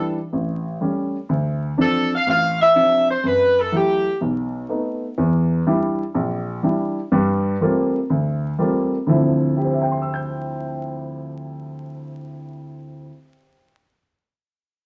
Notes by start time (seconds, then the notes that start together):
Already playing: E3 G3 D4 A4
0.33 A1
0.81 G3 A3 C#4
1.29 D2
1.77 F3 C4 D4 A4
2.15 F5
2.27 A1 F5
2.62 E5
2.75 F3 C4 D4
3.11 C5
3.24 F#2 B4
3.60 A4
3.72 F#3 A3 E4 G4
4.21 B1
4.69 A3 B3 D#4
5.18 E2
5.67 G3 D4 E4
6.14 A#1
6.63 G3 D4 E4
7.12 G2 G3
7.61 G3 A3 A#3 C4 F4
8.10 D2
8.59 G3 A3 A#3 C4 F4
9.07 D2 D3 F3 C4 E4
9.57 G4
9.64 C5
9.72 E5
9.82 G5
9.92 C6
10.02 E6
10.14 G6